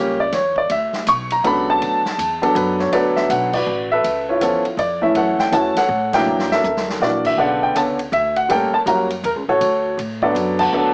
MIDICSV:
0, 0, Header, 1, 5, 480
1, 0, Start_track
1, 0, Key_signature, 2, "major"
1, 0, Tempo, 371058
1, 909, Time_signature, 3, 2, 24, 8
1, 14151, End_track
2, 0, Start_track
2, 0, Title_t, "Upright piano"
2, 0, Program_c, 0, 0
2, 0, Note_on_c, 0, 55, 59
2, 0, Note_on_c, 0, 58, 55
2, 0, Note_on_c, 0, 61, 57
2, 0, Note_on_c, 0, 67, 69
2, 221, Note_off_c, 0, 55, 0
2, 225, Note_off_c, 0, 58, 0
2, 229, Note_off_c, 0, 61, 0
2, 232, Note_off_c, 0, 67, 0
2, 260, Note_on_c, 0, 74, 83
2, 427, Note_off_c, 0, 74, 0
2, 439, Note_on_c, 0, 73, 87
2, 730, Note_off_c, 0, 73, 0
2, 745, Note_on_c, 0, 74, 83
2, 909, Note_off_c, 0, 74, 0
2, 922, Note_on_c, 0, 76, 79
2, 1362, Note_off_c, 0, 76, 0
2, 1402, Note_on_c, 0, 85, 103
2, 1691, Note_off_c, 0, 85, 0
2, 1707, Note_on_c, 0, 82, 96
2, 1859, Note_on_c, 0, 54, 65
2, 1863, Note_on_c, 0, 59, 59
2, 1869, Note_on_c, 0, 62, 61
2, 1870, Note_off_c, 0, 82, 0
2, 1879, Note_on_c, 0, 69, 75
2, 1899, Note_on_c, 0, 83, 110
2, 2180, Note_off_c, 0, 83, 0
2, 2198, Note_on_c, 0, 81, 103
2, 2587, Note_off_c, 0, 54, 0
2, 2589, Note_off_c, 0, 59, 0
2, 2592, Note_off_c, 0, 62, 0
2, 2597, Note_off_c, 0, 69, 0
2, 3128, Note_on_c, 0, 54, 69
2, 3132, Note_on_c, 0, 59, 61
2, 3138, Note_on_c, 0, 62, 64
2, 3146, Note_on_c, 0, 69, 73
2, 3268, Note_off_c, 0, 81, 0
2, 3321, Note_on_c, 0, 71, 76
2, 3598, Note_off_c, 0, 71, 0
2, 3625, Note_on_c, 0, 73, 82
2, 3750, Note_off_c, 0, 54, 0
2, 3752, Note_off_c, 0, 59, 0
2, 3755, Note_off_c, 0, 62, 0
2, 3759, Note_off_c, 0, 69, 0
2, 3792, Note_on_c, 0, 74, 71
2, 3793, Note_on_c, 0, 54, 72
2, 3799, Note_off_c, 0, 73, 0
2, 3800, Note_on_c, 0, 59, 65
2, 3806, Note_on_c, 0, 62, 61
2, 3808, Note_on_c, 0, 66, 54
2, 3810, Note_on_c, 0, 71, 56
2, 3814, Note_on_c, 0, 69, 71
2, 4094, Note_on_c, 0, 76, 79
2, 4103, Note_off_c, 0, 74, 0
2, 4256, Note_off_c, 0, 76, 0
2, 4274, Note_on_c, 0, 78, 81
2, 4514, Note_off_c, 0, 54, 0
2, 4517, Note_off_c, 0, 59, 0
2, 4520, Note_off_c, 0, 62, 0
2, 4524, Note_off_c, 0, 69, 0
2, 4531, Note_off_c, 0, 66, 0
2, 4531, Note_off_c, 0, 71, 0
2, 4554, Note_off_c, 0, 78, 0
2, 4582, Note_on_c, 0, 74, 70
2, 4600, Note_on_c, 0, 66, 58
2, 4605, Note_on_c, 0, 71, 52
2, 5062, Note_off_c, 0, 71, 0
2, 5067, Note_on_c, 0, 76, 92
2, 5071, Note_off_c, 0, 74, 0
2, 5082, Note_on_c, 0, 69, 59
2, 5082, Note_on_c, 0, 71, 66
2, 5196, Note_off_c, 0, 66, 0
2, 5507, Note_off_c, 0, 76, 0
2, 5553, Note_on_c, 0, 73, 76
2, 5567, Note_on_c, 0, 64, 54
2, 5567, Note_on_c, 0, 65, 62
2, 5677, Note_off_c, 0, 69, 0
2, 5677, Note_off_c, 0, 71, 0
2, 5706, Note_on_c, 0, 53, 59
2, 5713, Note_on_c, 0, 59, 54
2, 5721, Note_on_c, 0, 61, 51
2, 5728, Note_on_c, 0, 69, 71
2, 5981, Note_off_c, 0, 53, 0
2, 5985, Note_off_c, 0, 59, 0
2, 5989, Note_off_c, 0, 61, 0
2, 5990, Note_off_c, 0, 73, 0
2, 5992, Note_off_c, 0, 69, 0
2, 6160, Note_off_c, 0, 64, 0
2, 6160, Note_off_c, 0, 65, 0
2, 6199, Note_on_c, 0, 74, 85
2, 6477, Note_off_c, 0, 74, 0
2, 6486, Note_on_c, 0, 52, 64
2, 6491, Note_on_c, 0, 57, 63
2, 6499, Note_on_c, 0, 61, 65
2, 6505, Note_on_c, 0, 64, 76
2, 6506, Note_on_c, 0, 76, 85
2, 6679, Note_off_c, 0, 76, 0
2, 6682, Note_on_c, 0, 78, 82
2, 6688, Note_on_c, 0, 73, 57
2, 6689, Note_on_c, 0, 69, 65
2, 6984, Note_on_c, 0, 79, 80
2, 6989, Note_off_c, 0, 78, 0
2, 7110, Note_off_c, 0, 52, 0
2, 7112, Note_off_c, 0, 57, 0
2, 7116, Note_off_c, 0, 61, 0
2, 7119, Note_off_c, 0, 64, 0
2, 7135, Note_on_c, 0, 52, 66
2, 7139, Note_on_c, 0, 57, 57
2, 7142, Note_off_c, 0, 79, 0
2, 7152, Note_on_c, 0, 61, 62
2, 7157, Note_on_c, 0, 81, 92
2, 7158, Note_on_c, 0, 66, 70
2, 7412, Note_off_c, 0, 69, 0
2, 7412, Note_off_c, 0, 73, 0
2, 7416, Note_off_c, 0, 52, 0
2, 7418, Note_off_c, 0, 57, 0
2, 7424, Note_off_c, 0, 61, 0
2, 7427, Note_off_c, 0, 66, 0
2, 7465, Note_on_c, 0, 78, 94
2, 7467, Note_off_c, 0, 81, 0
2, 7470, Note_on_c, 0, 73, 59
2, 7474, Note_on_c, 0, 69, 64
2, 7906, Note_off_c, 0, 78, 0
2, 7929, Note_on_c, 0, 52, 74
2, 7936, Note_on_c, 0, 58, 63
2, 7943, Note_on_c, 0, 79, 110
2, 7949, Note_on_c, 0, 62, 61
2, 7953, Note_on_c, 0, 70, 66
2, 7954, Note_on_c, 0, 54, 84
2, 7958, Note_on_c, 0, 76, 71
2, 8072, Note_off_c, 0, 73, 0
2, 8074, Note_off_c, 0, 69, 0
2, 8413, Note_off_c, 0, 76, 0
2, 8425, Note_off_c, 0, 70, 0
2, 8432, Note_on_c, 0, 76, 104
2, 8433, Note_off_c, 0, 79, 0
2, 8443, Note_on_c, 0, 69, 65
2, 8444, Note_on_c, 0, 70, 60
2, 8552, Note_off_c, 0, 52, 0
2, 8555, Note_off_c, 0, 58, 0
2, 8562, Note_off_c, 0, 62, 0
2, 8564, Note_off_c, 0, 54, 0
2, 8870, Note_off_c, 0, 76, 0
2, 9039, Note_off_c, 0, 69, 0
2, 9040, Note_off_c, 0, 70, 0
2, 9061, Note_on_c, 0, 52, 56
2, 9069, Note_on_c, 0, 58, 51
2, 9074, Note_on_c, 0, 62, 54
2, 9078, Note_on_c, 0, 66, 68
2, 9088, Note_on_c, 0, 74, 88
2, 9363, Note_off_c, 0, 74, 0
2, 9396, Note_on_c, 0, 76, 91
2, 9545, Note_off_c, 0, 52, 0
2, 9547, Note_on_c, 0, 50, 59
2, 9549, Note_off_c, 0, 58, 0
2, 9549, Note_off_c, 0, 76, 0
2, 9551, Note_on_c, 0, 59, 55
2, 9552, Note_off_c, 0, 62, 0
2, 9554, Note_off_c, 0, 66, 0
2, 9561, Note_on_c, 0, 49, 57
2, 9561, Note_on_c, 0, 69, 64
2, 9569, Note_on_c, 0, 78, 93
2, 9570, Note_on_c, 0, 74, 62
2, 9844, Note_off_c, 0, 78, 0
2, 9871, Note_on_c, 0, 79, 81
2, 10005, Note_off_c, 0, 50, 0
2, 10013, Note_off_c, 0, 59, 0
2, 10018, Note_off_c, 0, 49, 0
2, 10018, Note_off_c, 0, 69, 0
2, 10024, Note_on_c, 0, 50, 58
2, 10027, Note_off_c, 0, 79, 0
2, 10032, Note_on_c, 0, 59, 56
2, 10034, Note_on_c, 0, 61, 55
2, 10046, Note_on_c, 0, 81, 91
2, 10047, Note_on_c, 0, 69, 64
2, 10113, Note_off_c, 0, 81, 0
2, 10293, Note_off_c, 0, 74, 0
2, 10302, Note_off_c, 0, 50, 0
2, 10306, Note_off_c, 0, 59, 0
2, 10307, Note_off_c, 0, 61, 0
2, 10313, Note_off_c, 0, 69, 0
2, 10521, Note_on_c, 0, 76, 97
2, 10823, Note_on_c, 0, 78, 93
2, 10830, Note_off_c, 0, 76, 0
2, 10983, Note_on_c, 0, 55, 72
2, 10992, Note_on_c, 0, 58, 61
2, 10997, Note_on_c, 0, 61, 66
2, 11000, Note_off_c, 0, 78, 0
2, 11006, Note_on_c, 0, 69, 76
2, 11014, Note_on_c, 0, 79, 94
2, 11017, Note_on_c, 0, 70, 65
2, 11018, Note_on_c, 0, 73, 63
2, 11261, Note_off_c, 0, 55, 0
2, 11266, Note_off_c, 0, 58, 0
2, 11268, Note_off_c, 0, 61, 0
2, 11273, Note_off_c, 0, 69, 0
2, 11287, Note_off_c, 0, 79, 0
2, 11309, Note_on_c, 0, 81, 90
2, 11373, Note_off_c, 0, 81, 0
2, 11465, Note_on_c, 0, 55, 63
2, 11479, Note_on_c, 0, 58, 53
2, 11482, Note_on_c, 0, 61, 55
2, 11482, Note_on_c, 0, 82, 91
2, 11486, Note_on_c, 0, 66, 74
2, 11738, Note_off_c, 0, 70, 0
2, 11738, Note_off_c, 0, 73, 0
2, 11742, Note_off_c, 0, 55, 0
2, 11749, Note_off_c, 0, 58, 0
2, 11751, Note_off_c, 0, 61, 0
2, 11753, Note_off_c, 0, 66, 0
2, 11761, Note_off_c, 0, 82, 0
2, 11967, Note_on_c, 0, 70, 97
2, 12034, Note_off_c, 0, 70, 0
2, 12275, Note_on_c, 0, 69, 69
2, 12277, Note_on_c, 0, 73, 104
2, 12279, Note_on_c, 0, 66, 65
2, 12876, Note_off_c, 0, 69, 0
2, 12877, Note_off_c, 0, 73, 0
2, 12878, Note_off_c, 0, 66, 0
2, 13223, Note_on_c, 0, 54, 60
2, 13228, Note_on_c, 0, 59, 61
2, 13228, Note_on_c, 0, 74, 78
2, 13234, Note_on_c, 0, 71, 63
2, 13235, Note_on_c, 0, 62, 61
2, 13235, Note_on_c, 0, 66, 59
2, 13239, Note_on_c, 0, 69, 71
2, 13704, Note_on_c, 0, 81, 102
2, 13717, Note_off_c, 0, 74, 0
2, 13717, Note_on_c, 0, 78, 62
2, 13836, Note_off_c, 0, 66, 0
2, 13836, Note_off_c, 0, 71, 0
2, 13840, Note_off_c, 0, 54, 0
2, 13843, Note_off_c, 0, 59, 0
2, 13846, Note_off_c, 0, 62, 0
2, 13848, Note_off_c, 0, 69, 0
2, 13877, Note_on_c, 0, 54, 71
2, 13886, Note_on_c, 0, 59, 59
2, 13889, Note_on_c, 0, 62, 65
2, 13900, Note_on_c, 0, 69, 72
2, 14149, Note_off_c, 0, 54, 0
2, 14151, Note_off_c, 0, 59, 0
2, 14151, Note_off_c, 0, 62, 0
2, 14151, Note_off_c, 0, 69, 0
2, 14151, Note_off_c, 0, 78, 0
2, 14151, Note_off_c, 0, 81, 0
2, 14151, End_track
3, 0, Start_track
3, 0, Title_t, "Upright bass"
3, 0, Program_c, 1, 32
3, 0, Note_on_c, 1, 37, 88
3, 409, Note_off_c, 1, 37, 0
3, 418, Note_on_c, 1, 40, 91
3, 889, Note_off_c, 1, 40, 0
3, 899, Note_on_c, 1, 38, 83
3, 1369, Note_off_c, 1, 38, 0
3, 1384, Note_on_c, 1, 35, 90
3, 1851, Note_off_c, 1, 35, 0
3, 1864, Note_on_c, 1, 37, 102
3, 2331, Note_off_c, 1, 37, 0
3, 2354, Note_on_c, 1, 38, 80
3, 2634, Note_off_c, 1, 38, 0
3, 2823, Note_on_c, 1, 40, 94
3, 3290, Note_off_c, 1, 40, 0
3, 3300, Note_on_c, 1, 42, 106
3, 3769, Note_off_c, 1, 42, 0
3, 3776, Note_on_c, 1, 38, 75
3, 4247, Note_off_c, 1, 38, 0
3, 4267, Note_on_c, 1, 35, 87
3, 4732, Note_off_c, 1, 35, 0
3, 4743, Note_on_c, 1, 33, 89
3, 5210, Note_off_c, 1, 33, 0
3, 5229, Note_on_c, 1, 37, 77
3, 5694, Note_off_c, 1, 37, 0
3, 5708, Note_on_c, 1, 40, 80
3, 5991, Note_off_c, 1, 40, 0
3, 6173, Note_on_c, 1, 41, 92
3, 6646, Note_off_c, 1, 41, 0
3, 6657, Note_on_c, 1, 42, 85
3, 6946, Note_off_c, 1, 42, 0
3, 7143, Note_on_c, 1, 40, 86
3, 7429, Note_off_c, 1, 40, 0
3, 7613, Note_on_c, 1, 45, 93
3, 8086, Note_off_c, 1, 45, 0
3, 8103, Note_on_c, 1, 42, 82
3, 8572, Note_off_c, 1, 42, 0
3, 8586, Note_on_c, 1, 38, 83
3, 9054, Note_off_c, 1, 38, 0
3, 9061, Note_on_c, 1, 34, 87
3, 9531, Note_off_c, 1, 34, 0
3, 9539, Note_on_c, 1, 35, 70
3, 10010, Note_off_c, 1, 35, 0
3, 10017, Note_on_c, 1, 37, 74
3, 10489, Note_off_c, 1, 37, 0
3, 10506, Note_on_c, 1, 38, 96
3, 10974, Note_off_c, 1, 38, 0
3, 10991, Note_on_c, 1, 45, 76
3, 11275, Note_off_c, 1, 45, 0
3, 11462, Note_on_c, 1, 42, 84
3, 11932, Note_off_c, 1, 42, 0
3, 11948, Note_on_c, 1, 40, 94
3, 12101, Note_off_c, 1, 40, 0
3, 12101, Note_on_c, 1, 37, 50
3, 12261, Note_off_c, 1, 37, 0
3, 12269, Note_on_c, 1, 33, 63
3, 12419, Note_off_c, 1, 33, 0
3, 12426, Note_on_c, 1, 38, 84
3, 12895, Note_off_c, 1, 38, 0
3, 12902, Note_on_c, 1, 45, 85
3, 13373, Note_off_c, 1, 45, 0
3, 13387, Note_on_c, 1, 42, 96
3, 13856, Note_off_c, 1, 42, 0
3, 13876, Note_on_c, 1, 38, 86
3, 14151, Note_off_c, 1, 38, 0
3, 14151, End_track
4, 0, Start_track
4, 0, Title_t, "Muted upright bass strokes"
4, 2648, Note_on_c, 9, 29, 42
4, 2778, Note_off_c, 9, 29, 0
4, 6004, Note_on_c, 9, 29, 37
4, 6134, Note_off_c, 9, 29, 0
4, 6963, Note_on_c, 9, 29, 35
4, 7092, Note_off_c, 9, 29, 0
4, 7445, Note_on_c, 9, 29, 37
4, 7575, Note_off_c, 9, 29, 0
4, 11289, Note_on_c, 9, 29, 37
4, 11418, Note_off_c, 9, 29, 0
4, 14151, End_track
5, 0, Start_track
5, 0, Title_t, "Drums"
5, 417, Note_on_c, 9, 38, 39
5, 418, Note_on_c, 9, 51, 54
5, 546, Note_off_c, 9, 38, 0
5, 548, Note_off_c, 9, 51, 0
5, 721, Note_on_c, 9, 36, 56
5, 850, Note_off_c, 9, 36, 0
5, 897, Note_on_c, 9, 51, 67
5, 1026, Note_off_c, 9, 51, 0
5, 1201, Note_on_c, 9, 38, 58
5, 1331, Note_off_c, 9, 38, 0
5, 1376, Note_on_c, 9, 44, 63
5, 1376, Note_on_c, 9, 51, 62
5, 1506, Note_off_c, 9, 44, 0
5, 1506, Note_off_c, 9, 51, 0
5, 1684, Note_on_c, 9, 51, 50
5, 1814, Note_off_c, 9, 51, 0
5, 1864, Note_on_c, 9, 51, 57
5, 1993, Note_off_c, 9, 51, 0
5, 2350, Note_on_c, 9, 51, 61
5, 2479, Note_off_c, 9, 51, 0
5, 2657, Note_on_c, 9, 38, 64
5, 2786, Note_off_c, 9, 38, 0
5, 2831, Note_on_c, 9, 44, 55
5, 2831, Note_on_c, 9, 51, 73
5, 2961, Note_off_c, 9, 44, 0
5, 2961, Note_off_c, 9, 51, 0
5, 3142, Note_on_c, 9, 51, 46
5, 3271, Note_off_c, 9, 51, 0
5, 3310, Note_on_c, 9, 51, 64
5, 3440, Note_off_c, 9, 51, 0
5, 3614, Note_on_c, 9, 38, 34
5, 3744, Note_off_c, 9, 38, 0
5, 3786, Note_on_c, 9, 51, 64
5, 3915, Note_off_c, 9, 51, 0
5, 4092, Note_on_c, 9, 38, 46
5, 4221, Note_off_c, 9, 38, 0
5, 4269, Note_on_c, 9, 44, 45
5, 4269, Note_on_c, 9, 51, 61
5, 4399, Note_off_c, 9, 44, 0
5, 4399, Note_off_c, 9, 51, 0
5, 4574, Note_on_c, 9, 36, 83
5, 4574, Note_on_c, 9, 49, 72
5, 4703, Note_off_c, 9, 49, 0
5, 4704, Note_off_c, 9, 36, 0
5, 5231, Note_on_c, 9, 51, 61
5, 5360, Note_off_c, 9, 51, 0
5, 5707, Note_on_c, 9, 44, 59
5, 5707, Note_on_c, 9, 51, 61
5, 5836, Note_off_c, 9, 44, 0
5, 5836, Note_off_c, 9, 51, 0
5, 6015, Note_on_c, 9, 51, 42
5, 6145, Note_off_c, 9, 51, 0
5, 6190, Note_on_c, 9, 51, 60
5, 6319, Note_off_c, 9, 51, 0
5, 6663, Note_on_c, 9, 51, 58
5, 6792, Note_off_c, 9, 51, 0
5, 6971, Note_on_c, 9, 38, 55
5, 7101, Note_off_c, 9, 38, 0
5, 7145, Note_on_c, 9, 44, 56
5, 7145, Note_on_c, 9, 51, 57
5, 7275, Note_off_c, 9, 44, 0
5, 7275, Note_off_c, 9, 51, 0
5, 7454, Note_on_c, 9, 38, 47
5, 7456, Note_on_c, 9, 51, 67
5, 7584, Note_off_c, 9, 38, 0
5, 7585, Note_off_c, 9, 51, 0
5, 7928, Note_on_c, 9, 38, 82
5, 7929, Note_on_c, 9, 51, 61
5, 8058, Note_off_c, 9, 38, 0
5, 8059, Note_off_c, 9, 51, 0
5, 8265, Note_on_c, 9, 38, 59
5, 8394, Note_off_c, 9, 38, 0
5, 8425, Note_on_c, 9, 38, 68
5, 8554, Note_off_c, 9, 38, 0
5, 8590, Note_on_c, 9, 48, 61
5, 8591, Note_on_c, 9, 44, 56
5, 8719, Note_off_c, 9, 48, 0
5, 8721, Note_off_c, 9, 44, 0
5, 8755, Note_on_c, 9, 38, 71
5, 8884, Note_off_c, 9, 38, 0
5, 8918, Note_on_c, 9, 38, 80
5, 9047, Note_off_c, 9, 38, 0
5, 9079, Note_on_c, 9, 38, 53
5, 9208, Note_off_c, 9, 38, 0
5, 9376, Note_on_c, 9, 36, 70
5, 9377, Note_on_c, 9, 49, 71
5, 9505, Note_off_c, 9, 36, 0
5, 9507, Note_off_c, 9, 49, 0
5, 10033, Note_on_c, 9, 44, 58
5, 10033, Note_on_c, 9, 51, 66
5, 10162, Note_off_c, 9, 44, 0
5, 10162, Note_off_c, 9, 51, 0
5, 10338, Note_on_c, 9, 51, 45
5, 10467, Note_off_c, 9, 51, 0
5, 10514, Note_on_c, 9, 51, 55
5, 10644, Note_off_c, 9, 51, 0
5, 10820, Note_on_c, 9, 51, 43
5, 10949, Note_off_c, 9, 51, 0
5, 10992, Note_on_c, 9, 51, 72
5, 11121, Note_off_c, 9, 51, 0
5, 11473, Note_on_c, 9, 44, 59
5, 11473, Note_on_c, 9, 51, 57
5, 11602, Note_off_c, 9, 44, 0
5, 11602, Note_off_c, 9, 51, 0
5, 11779, Note_on_c, 9, 51, 47
5, 11908, Note_off_c, 9, 51, 0
5, 11955, Note_on_c, 9, 51, 54
5, 12084, Note_off_c, 9, 51, 0
5, 12431, Note_on_c, 9, 51, 60
5, 12560, Note_off_c, 9, 51, 0
5, 12918, Note_on_c, 9, 44, 56
5, 12918, Note_on_c, 9, 51, 69
5, 13048, Note_off_c, 9, 44, 0
5, 13048, Note_off_c, 9, 51, 0
5, 13221, Note_on_c, 9, 36, 51
5, 13350, Note_off_c, 9, 36, 0
5, 13400, Note_on_c, 9, 51, 63
5, 13530, Note_off_c, 9, 51, 0
5, 13698, Note_on_c, 9, 49, 76
5, 13700, Note_on_c, 9, 36, 84
5, 13828, Note_off_c, 9, 49, 0
5, 13830, Note_off_c, 9, 36, 0
5, 14151, End_track
0, 0, End_of_file